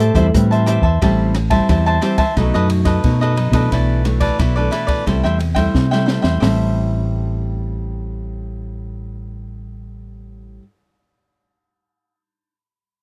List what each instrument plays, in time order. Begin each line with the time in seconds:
Already playing: fingered electric bass A2, nylon-string guitar A2, trombone A3
0.00 cavaquinho G4 C5 E5 A5, closed hi-hat
0.14 fingered electric bass E2, nylon-string guitar G3 C4 E4, cavaquinho G4 C5 E5 A5, kick, closed hi-hat
0.34 fingered electric bass A2, nylon-string guitar E3 G3 C4 E4, kick, cross-stick, closed hi-hat
0.51 cavaquinho C5 E5 A5, closed hi-hat
0.66 cavaquinho G4 C5 E5 A5, cross-stick, closed hi-hat
0.81 fingered electric bass E2, cavaquinho C5 E5 A5, kick
1.01 fingered electric bass A1, nylon-string guitar A2 G3 C4 E4, cavaquinho G4 C5 E5 A5, kick, cross-stick, ride
1.34 muted cavaquinho stroke, cross-stick, ride
1.50 nylon-string guitar G3 C4 E4, cavaquinho C5 E5 A5, kick, ride
1.69 fingered electric bass E2, nylon-string guitar E3, cavaquinho G4 C5 E5 A5, kick, cross-stick, ride
1.86 cavaquinho C5 E5 A5
2.01 nylon-string guitar G3 C4 E4, cavaquinho G4 C5 E5 A5, cross-stick, ride
2.18 cavaquinho C5 E5 A5, kick, ride
2.37 fingered electric bass B1, nylon-string guitar B2 F#3 A3 D#4, cavaquinho D#4 A4 B4 D#5, kick, cross-stick, ride
2.54 fingered electric bass F#2, cavaquinho A4 B4 D#5, cross-stick
2.70 muted cavaquinho stroke, ride
2.85 cavaquinho A4 B4 D#5, kick, cross-stick, ride
3.04 nylon-string guitar F#2 F#3 A3 D#4, fingered electric bass B2, kick, ride
3.21 cavaquinho A4 B4 D#5, cross-stick
3.36 cavaquinho D#4 A4 B4 D#5, ride
3.52 fingered electric bass B2, nylon-string guitar E3 A3 D4, cavaquinho A4 B4 D#5, kick, cross-stick, ride
3.72 fingered electric bass B1, nylon-string guitar B2, cavaquinho E4 A4 B4 D5, kick, cross-stick, ride
4.05 nylon-string guitar E3 A3 D4, muted cavaquinho stroke, cross-stick, ride
4.20 cavaquinho A4 B4 D5, kick, ride
4.39 fingered electric bass B1, nylon-string guitar B2, cavaquinho E4 A4 B4 D5, kick, cross-stick, ride
4.56 nylon-string guitar E3 A3 D4, cavaquinho A4 B4 D5
4.71 cavaquinho E4 A4 B4 D5, cross-stick, ride
4.87 cavaquinho A4 B4 D5, kick, ride
5.06 fingered electric bass C2, nylon-string guitar C3 G3 A3 E4, cavaquinho A4 C5 E5 G5, kick, cross-stick, ride
5.24 fingered electric bass E2, cavaquinho C5 E5 G5, cross-stick
5.39 muted cavaquinho stroke, ride
5.55 nylon-string guitar G3 A3 E4, cavaquinho C5 E5 G5, kick, cross-stick, ride
5.75 fingered electric bass C3, nylon-string guitar C3, kick, snare
5.91 nylon-string guitar G3 A3 E4, cavaquinho C5 E5 G5, snare
6.06 cavaquinho A4 C5 E5 G5, snare
6.22 fingered electric bass E2, cavaquinho C5 E5 G5, snare
6.40 fingered electric bass A1, nylon-string guitar A2 G3, cavaquinho G4 C5 E5 A5, snare, floor tom, open hi-hat
6.45 nylon-string guitar C4 E4